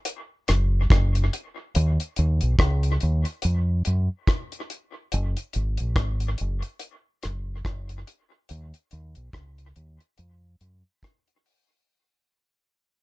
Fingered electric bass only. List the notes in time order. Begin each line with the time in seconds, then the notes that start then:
0.49 F#1
0.91 F#1
1.76 D#2
2.19 D#2
2.43 B1
2.59 C#2
3.03 D#2
3.45 F2
3.87 F#2
5.14 F#1
5.56 G#1
5.80 A#1
5.97 G#1
6.41 F#1
7.25 F#1
7.66 F#1
8.51 D#2
8.93 D#2
9.17 B1
9.34 C#2
9.76 D#2
10.19 F2
10.61 F#2